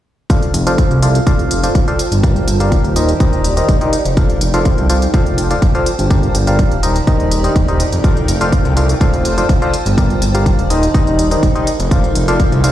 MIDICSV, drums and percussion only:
0, 0, Header, 1, 2, 480
1, 0, Start_track
1, 0, Tempo, 483871
1, 297, Time_signature, 4, 2, 24, 8
1, 12617, End_track
2, 0, Start_track
2, 0, Title_t, "Drums"
2, 297, Note_on_c, 9, 36, 112
2, 297, Note_on_c, 9, 42, 54
2, 396, Note_off_c, 9, 36, 0
2, 396, Note_off_c, 9, 42, 0
2, 422, Note_on_c, 9, 42, 25
2, 521, Note_off_c, 9, 42, 0
2, 537, Note_on_c, 9, 42, 92
2, 636, Note_off_c, 9, 42, 0
2, 662, Note_on_c, 9, 42, 53
2, 761, Note_off_c, 9, 42, 0
2, 776, Note_on_c, 9, 42, 50
2, 777, Note_on_c, 9, 36, 102
2, 876, Note_off_c, 9, 36, 0
2, 876, Note_off_c, 9, 42, 0
2, 902, Note_on_c, 9, 42, 26
2, 1001, Note_off_c, 9, 42, 0
2, 1017, Note_on_c, 9, 42, 89
2, 1116, Note_off_c, 9, 42, 0
2, 1142, Note_on_c, 9, 42, 51
2, 1241, Note_off_c, 9, 42, 0
2, 1256, Note_on_c, 9, 42, 53
2, 1257, Note_on_c, 9, 36, 109
2, 1356, Note_off_c, 9, 36, 0
2, 1356, Note_off_c, 9, 42, 0
2, 1382, Note_on_c, 9, 42, 26
2, 1481, Note_off_c, 9, 42, 0
2, 1497, Note_on_c, 9, 42, 94
2, 1596, Note_off_c, 9, 42, 0
2, 1622, Note_on_c, 9, 42, 52
2, 1721, Note_off_c, 9, 42, 0
2, 1737, Note_on_c, 9, 36, 99
2, 1737, Note_on_c, 9, 42, 52
2, 1836, Note_off_c, 9, 36, 0
2, 1836, Note_off_c, 9, 42, 0
2, 1862, Note_on_c, 9, 42, 26
2, 1961, Note_off_c, 9, 42, 0
2, 1977, Note_on_c, 9, 42, 91
2, 2076, Note_off_c, 9, 42, 0
2, 2102, Note_on_c, 9, 42, 51
2, 2201, Note_off_c, 9, 42, 0
2, 2217, Note_on_c, 9, 36, 118
2, 2217, Note_on_c, 9, 42, 52
2, 2316, Note_off_c, 9, 36, 0
2, 2316, Note_off_c, 9, 42, 0
2, 2342, Note_on_c, 9, 42, 25
2, 2441, Note_off_c, 9, 42, 0
2, 2457, Note_on_c, 9, 42, 90
2, 2556, Note_off_c, 9, 42, 0
2, 2582, Note_on_c, 9, 42, 51
2, 2681, Note_off_c, 9, 42, 0
2, 2697, Note_on_c, 9, 36, 103
2, 2697, Note_on_c, 9, 42, 49
2, 2796, Note_off_c, 9, 36, 0
2, 2796, Note_off_c, 9, 42, 0
2, 2822, Note_on_c, 9, 42, 25
2, 2921, Note_off_c, 9, 42, 0
2, 2937, Note_on_c, 9, 42, 87
2, 3036, Note_off_c, 9, 42, 0
2, 3062, Note_on_c, 9, 42, 50
2, 3161, Note_off_c, 9, 42, 0
2, 3176, Note_on_c, 9, 42, 50
2, 3177, Note_on_c, 9, 36, 118
2, 3276, Note_off_c, 9, 36, 0
2, 3276, Note_off_c, 9, 42, 0
2, 3302, Note_on_c, 9, 42, 25
2, 3401, Note_off_c, 9, 42, 0
2, 3417, Note_on_c, 9, 42, 89
2, 3516, Note_off_c, 9, 42, 0
2, 3542, Note_on_c, 9, 42, 50
2, 3641, Note_off_c, 9, 42, 0
2, 3656, Note_on_c, 9, 42, 51
2, 3657, Note_on_c, 9, 36, 105
2, 3755, Note_off_c, 9, 42, 0
2, 3756, Note_off_c, 9, 36, 0
2, 3782, Note_on_c, 9, 42, 26
2, 3881, Note_off_c, 9, 42, 0
2, 3897, Note_on_c, 9, 42, 88
2, 3996, Note_off_c, 9, 42, 0
2, 4022, Note_on_c, 9, 42, 50
2, 4121, Note_off_c, 9, 42, 0
2, 4136, Note_on_c, 9, 42, 50
2, 4137, Note_on_c, 9, 36, 117
2, 4236, Note_off_c, 9, 36, 0
2, 4236, Note_off_c, 9, 42, 0
2, 4262, Note_on_c, 9, 42, 25
2, 4361, Note_off_c, 9, 42, 0
2, 4376, Note_on_c, 9, 42, 84
2, 4475, Note_off_c, 9, 42, 0
2, 4501, Note_on_c, 9, 42, 49
2, 4601, Note_off_c, 9, 42, 0
2, 4616, Note_on_c, 9, 42, 47
2, 4617, Note_on_c, 9, 36, 104
2, 4715, Note_off_c, 9, 42, 0
2, 4716, Note_off_c, 9, 36, 0
2, 4741, Note_on_c, 9, 42, 23
2, 4841, Note_off_c, 9, 42, 0
2, 4856, Note_on_c, 9, 42, 84
2, 4955, Note_off_c, 9, 42, 0
2, 4982, Note_on_c, 9, 42, 49
2, 5081, Note_off_c, 9, 42, 0
2, 5096, Note_on_c, 9, 42, 48
2, 5097, Note_on_c, 9, 36, 118
2, 5196, Note_off_c, 9, 36, 0
2, 5196, Note_off_c, 9, 42, 0
2, 5222, Note_on_c, 9, 42, 25
2, 5321, Note_off_c, 9, 42, 0
2, 5336, Note_on_c, 9, 42, 86
2, 5436, Note_off_c, 9, 42, 0
2, 5462, Note_on_c, 9, 42, 50
2, 5561, Note_off_c, 9, 42, 0
2, 5576, Note_on_c, 9, 42, 49
2, 5577, Note_on_c, 9, 36, 107
2, 5676, Note_off_c, 9, 36, 0
2, 5676, Note_off_c, 9, 42, 0
2, 5702, Note_on_c, 9, 42, 25
2, 5801, Note_off_c, 9, 42, 0
2, 5816, Note_on_c, 9, 42, 83
2, 5915, Note_off_c, 9, 42, 0
2, 5942, Note_on_c, 9, 42, 48
2, 6041, Note_off_c, 9, 42, 0
2, 6056, Note_on_c, 9, 42, 49
2, 6057, Note_on_c, 9, 36, 120
2, 6156, Note_off_c, 9, 36, 0
2, 6156, Note_off_c, 9, 42, 0
2, 6182, Note_on_c, 9, 42, 24
2, 6281, Note_off_c, 9, 42, 0
2, 6296, Note_on_c, 9, 42, 84
2, 6396, Note_off_c, 9, 42, 0
2, 6421, Note_on_c, 9, 42, 47
2, 6520, Note_off_c, 9, 42, 0
2, 6536, Note_on_c, 9, 36, 101
2, 6536, Note_on_c, 9, 42, 46
2, 6635, Note_off_c, 9, 42, 0
2, 6636, Note_off_c, 9, 36, 0
2, 6661, Note_on_c, 9, 42, 24
2, 6760, Note_off_c, 9, 42, 0
2, 6776, Note_on_c, 9, 42, 80
2, 6875, Note_off_c, 9, 42, 0
2, 6901, Note_on_c, 9, 42, 48
2, 7000, Note_off_c, 9, 42, 0
2, 7016, Note_on_c, 9, 36, 112
2, 7016, Note_on_c, 9, 42, 48
2, 7116, Note_off_c, 9, 36, 0
2, 7116, Note_off_c, 9, 42, 0
2, 7142, Note_on_c, 9, 42, 25
2, 7241, Note_off_c, 9, 42, 0
2, 7256, Note_on_c, 9, 42, 82
2, 7355, Note_off_c, 9, 42, 0
2, 7382, Note_on_c, 9, 42, 49
2, 7481, Note_off_c, 9, 42, 0
2, 7496, Note_on_c, 9, 36, 101
2, 7497, Note_on_c, 9, 42, 48
2, 7596, Note_off_c, 9, 36, 0
2, 7596, Note_off_c, 9, 42, 0
2, 7622, Note_on_c, 9, 42, 24
2, 7721, Note_off_c, 9, 42, 0
2, 7736, Note_on_c, 9, 42, 83
2, 7836, Note_off_c, 9, 42, 0
2, 7862, Note_on_c, 9, 42, 47
2, 7961, Note_off_c, 9, 42, 0
2, 7976, Note_on_c, 9, 36, 113
2, 7977, Note_on_c, 9, 42, 49
2, 8076, Note_off_c, 9, 36, 0
2, 8076, Note_off_c, 9, 42, 0
2, 8102, Note_on_c, 9, 42, 24
2, 8202, Note_off_c, 9, 42, 0
2, 8217, Note_on_c, 9, 42, 88
2, 8316, Note_off_c, 9, 42, 0
2, 8342, Note_on_c, 9, 42, 48
2, 8441, Note_off_c, 9, 42, 0
2, 8456, Note_on_c, 9, 36, 102
2, 8457, Note_on_c, 9, 42, 47
2, 8556, Note_off_c, 9, 36, 0
2, 8556, Note_off_c, 9, 42, 0
2, 8582, Note_on_c, 9, 42, 24
2, 8681, Note_off_c, 9, 42, 0
2, 8697, Note_on_c, 9, 42, 82
2, 8796, Note_off_c, 9, 42, 0
2, 8822, Note_on_c, 9, 42, 47
2, 8921, Note_off_c, 9, 42, 0
2, 8937, Note_on_c, 9, 36, 111
2, 8937, Note_on_c, 9, 42, 48
2, 9036, Note_off_c, 9, 36, 0
2, 9036, Note_off_c, 9, 42, 0
2, 9062, Note_on_c, 9, 42, 25
2, 9162, Note_off_c, 9, 42, 0
2, 9177, Note_on_c, 9, 42, 84
2, 9276, Note_off_c, 9, 42, 0
2, 9303, Note_on_c, 9, 42, 49
2, 9402, Note_off_c, 9, 42, 0
2, 9417, Note_on_c, 9, 36, 98
2, 9417, Note_on_c, 9, 42, 47
2, 9516, Note_off_c, 9, 36, 0
2, 9517, Note_off_c, 9, 42, 0
2, 9543, Note_on_c, 9, 42, 24
2, 9642, Note_off_c, 9, 42, 0
2, 9657, Note_on_c, 9, 42, 83
2, 9757, Note_off_c, 9, 42, 0
2, 9783, Note_on_c, 9, 42, 49
2, 9882, Note_off_c, 9, 42, 0
2, 9897, Note_on_c, 9, 36, 107
2, 9897, Note_on_c, 9, 42, 52
2, 9996, Note_off_c, 9, 36, 0
2, 9996, Note_off_c, 9, 42, 0
2, 10023, Note_on_c, 9, 42, 25
2, 10122, Note_off_c, 9, 42, 0
2, 10137, Note_on_c, 9, 42, 87
2, 10237, Note_off_c, 9, 42, 0
2, 10263, Note_on_c, 9, 42, 49
2, 10363, Note_off_c, 9, 42, 0
2, 10377, Note_on_c, 9, 36, 97
2, 10378, Note_on_c, 9, 42, 50
2, 10476, Note_off_c, 9, 36, 0
2, 10477, Note_off_c, 9, 42, 0
2, 10503, Note_on_c, 9, 42, 25
2, 10603, Note_off_c, 9, 42, 0
2, 10618, Note_on_c, 9, 42, 86
2, 10717, Note_off_c, 9, 42, 0
2, 10743, Note_on_c, 9, 42, 50
2, 10842, Note_off_c, 9, 42, 0
2, 10857, Note_on_c, 9, 36, 108
2, 10858, Note_on_c, 9, 42, 50
2, 10956, Note_off_c, 9, 36, 0
2, 10957, Note_off_c, 9, 42, 0
2, 10983, Note_on_c, 9, 42, 26
2, 11082, Note_off_c, 9, 42, 0
2, 11098, Note_on_c, 9, 42, 88
2, 11197, Note_off_c, 9, 42, 0
2, 11223, Note_on_c, 9, 42, 49
2, 11322, Note_off_c, 9, 42, 0
2, 11337, Note_on_c, 9, 36, 96
2, 11338, Note_on_c, 9, 42, 50
2, 11436, Note_off_c, 9, 36, 0
2, 11437, Note_off_c, 9, 42, 0
2, 11463, Note_on_c, 9, 42, 26
2, 11563, Note_off_c, 9, 42, 0
2, 11578, Note_on_c, 9, 42, 84
2, 11677, Note_off_c, 9, 42, 0
2, 11703, Note_on_c, 9, 42, 50
2, 11802, Note_off_c, 9, 42, 0
2, 11817, Note_on_c, 9, 36, 111
2, 11818, Note_on_c, 9, 42, 55
2, 11916, Note_off_c, 9, 36, 0
2, 11917, Note_off_c, 9, 42, 0
2, 11943, Note_on_c, 9, 42, 26
2, 12042, Note_off_c, 9, 42, 0
2, 12057, Note_on_c, 9, 42, 90
2, 12156, Note_off_c, 9, 42, 0
2, 12182, Note_on_c, 9, 42, 51
2, 12282, Note_off_c, 9, 42, 0
2, 12297, Note_on_c, 9, 36, 98
2, 12297, Note_on_c, 9, 42, 52
2, 12396, Note_off_c, 9, 36, 0
2, 12397, Note_off_c, 9, 42, 0
2, 12423, Note_on_c, 9, 42, 25
2, 12522, Note_off_c, 9, 42, 0
2, 12537, Note_on_c, 9, 42, 90
2, 12617, Note_off_c, 9, 42, 0
2, 12617, End_track
0, 0, End_of_file